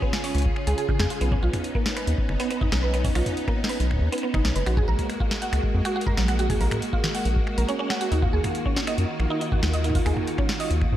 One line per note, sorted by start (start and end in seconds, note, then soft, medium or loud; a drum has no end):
0.00 1.18 C#3 medium
0.00 0.13 B3 medium
0.00 1.18 C#4 medium
0.00 1.17 F4 medium
0.00 1.18 G#4 medium
0.00 kick loud
0.13 finger snap soft
0.13 snare loud
0.24 0.34 C#5 medium
0.24 open hi-hat medium
0.35 0.49 C#2 medium
0.35 closed hi-hat soft
0.38 closed hi-hat soft
0.42 kick loud
0.42 closed hi-hat soft
0.56 finger snap medium
0.67 0.74 C#2 loud
0.67 0.77 G#4 medium
0.67 closed hi-hat medium
0.78 0.83 G#4 medium
0.78 closed hi-hat medium
0.89 0.98 C#3 loud
0.89 kick loud
0.99 1.07 F2 medium
0.99 1.10 G#4 medium
0.99 finger snap medium
0.99 snare loud
1.10 1.19 F4 medium
1.10 closed hi-hat medium
1.21 1.35 B1 loud
1.21 1.31 B3 medium
1.21 4.63 B3 medium
1.21 4.63 C#4 medium
1.21 4.63 D#4 medium
1.21 closed hi-hat medium
1.32 1.37 C#4 medium
1.32 kick loud
1.32 mid tom medium
1.43 1.50 B1 medium
1.43 1.53 F4 medium
1.53 finger snap medium
1.53 closed hi-hat medium
1.53 mid tom medium
1.64 closed hi-hat medium
1.75 1.85 A#3 medium
1.75 kick loud
1.86 snare loud
1.97 2.07 B4 medium
1.97 finger snap medium
1.97 closed hi-hat medium
2.07 2.15 D#2 medium
2.07 closed hi-hat medium
2.18 kick loud
2.29 2.36 F#1 loud
2.29 finger snap medium
2.40 2.49 B3 loud
2.40 closed hi-hat medium
2.50 2.59 B3 medium
2.50 closed hi-hat soft
2.61 2.70 D#4 medium
2.61 kick loud
2.61 mid tom medium
2.72 3.09 B1 medium
2.72 2.78 B2 medium
2.72 finger snap soft
2.72 snare loud
2.83 2.93 B4 medium
2.94 3.04 B3 medium
2.94 closed hi-hat medium
3.04 3.10 C#4 medium
3.04 kick loud
3.04 mid tom medium
3.04 open hi-hat medium
3.15 3.22 B1 medium
3.15 3.26 F4 medium
3.15 finger snap medium
3.15 open hi-hat medium
3.26 closed hi-hat medium
3.26 mid tom loud
3.37 closed hi-hat medium
3.48 3.58 A#3 medium
3.48 finger snap medium
3.48 kick loud
3.64 snare loud
3.69 3.79 B4 medium
3.69 open hi-hat medium
3.80 3.94 B1 medium
3.80 closed hi-hat medium
3.91 finger snap medium
3.91 kick medium
3.94 kick medium
3.96 kick medium
3.99 4.09 D#2 loud
3.99 kick medium
4.12 4.22 B3 loud
4.12 closed hi-hat medium
4.18 closed hi-hat medium
4.23 4.32 B3 medium
4.34 4.41 F#1 loud
4.34 4.43 D#4 medium
4.34 finger snap medium
4.34 kick loud
4.45 4.52 B1 medium
4.45 4.50 B2 medium
4.45 snare loud
4.55 4.63 F#1 loud
4.55 4.66 B4 medium
4.55 closed hi-hat medium
4.66 4.81 A#1 loud
4.66 8.08 G#3 medium
4.66 10.97 A#3 medium
4.66 4.77 F#4 medium
4.66 10.97 F#4 medium
4.66 finger snap medium
4.66 closed hi-hat medium
4.77 4.83 G#4 medium
4.77 kick loud
4.77 mid tom medium
4.88 4.95 A#1 medium
4.88 4.98 A#4 medium
4.99 closed hi-hat medium
4.99 mid tom loud
5.10 finger snap medium
5.10 closed hi-hat medium
5.20 5.31 F4 medium
5.20 kick loud
5.31 snare loud
5.42 5.52 F#5 medium
5.42 closed hi-hat medium
5.53 5.60 C#2 medium
5.53 finger snap medium
5.53 closed hi-hat medium
5.63 kick loud
5.74 5.81 F2 loud
5.85 5.95 F#4 loud
5.85 finger snap medium
5.85 closed hi-hat medium
5.96 6.05 F#4 medium
6.01 closed hi-hat medium
6.07 6.16 A#4 medium
6.07 kick loud
6.07 mid tom medium
6.17 6.55 A#1 medium
6.17 6.23 F#3 medium
6.17 snare loud
6.28 6.38 F#5 medium
6.28 finger snap medium
6.28 closed hi-hat medium
6.39 6.49 F#4 medium
6.39 closed hi-hat medium
6.50 6.55 G#4 medium
6.50 kick loud
6.50 mid tom medium
6.50 open hi-hat medium
6.61 6.68 A#1 medium
6.61 6.71 A#4 medium
6.61 open hi-hat medium
6.71 finger snap medium
6.71 closed hi-hat medium
6.71 mid tom medium
6.74 mid tom medium
6.77 mid tom medium
6.80 closed hi-hat medium
6.80 mid tom medium
6.93 7.03 F4 medium
6.93 kick loud
7.04 finger snap medium
7.04 snare loud
7.15 7.25 F#5 medium
7.15 open hi-hat medium
7.25 7.40 A#1 medium
7.25 closed hi-hat medium
7.36 kick loud
7.47 finger snap medium
7.58 7.65 A#1 loud
7.58 7.68 A#4 medium
7.58 closed hi-hat medium
7.68 7.78 C#4 loud
7.68 closed hi-hat medium
7.79 7.90 C#4 loud
7.90 8.00 F#5 medium
7.90 finger snap medium
7.90 snare loud
8.01 8.10 F#4 loud
8.01 closed hi-hat medium
8.12 8.26 D#2 loud
8.12 10.97 D#3 medium
8.12 8.22 D#4 medium
8.12 10.97 F4 medium
8.12 closed hi-hat medium
8.22 8.28 F4 medium
8.22 kick loud
8.22 mid tom medium
8.33 8.40 D#2 medium
8.33 8.43 G#4 medium
8.44 finger snap medium
8.44 closed hi-hat medium
8.44 mid tom medium
8.55 closed hi-hat medium
8.66 8.76 C#4 medium
8.66 kick loud
8.76 snare loud
8.87 8.93 D#5 medium
8.87 finger snap medium
8.87 closed hi-hat medium
8.98 9.05 F#2 medium
8.98 closed hi-hat medium
9.20 9.27 A#1 loud
9.20 finger snap medium
9.30 9.40 D#4 loud
9.41 9.50 D#4 medium
9.41 closed hi-hat medium
9.52 9.61 F#4 medium
9.52 kick loud
9.52 mid tom medium
9.63 10.00 D#2 medium
9.63 9.68 D#3 medium
9.63 finger snap medium
9.63 snare loud
9.73 9.84 D#5 medium
9.73 closed hi-hat medium
9.84 9.95 D#4 medium
9.84 closed hi-hat medium
9.90 mid tom medium
9.95 10.00 F4 medium
9.95 kick loud
9.95 open hi-hat medium
10.06 10.13 D#2 medium
10.06 10.16 G#4 medium
10.06 finger snap medium
10.06 open hi-hat medium
10.17 mid tom medium
10.27 closed hi-hat medium
10.38 10.49 C#4 medium
10.38 finger snap medium
10.38 kick loud
10.49 snare loud
10.60 10.65 D#5 medium
10.60 open hi-hat medium
10.71 10.85 D#2 loud
10.71 closed hi-hat medium
10.81 finger snap medium
10.81 kick loud
10.92 10.97 G#2 loud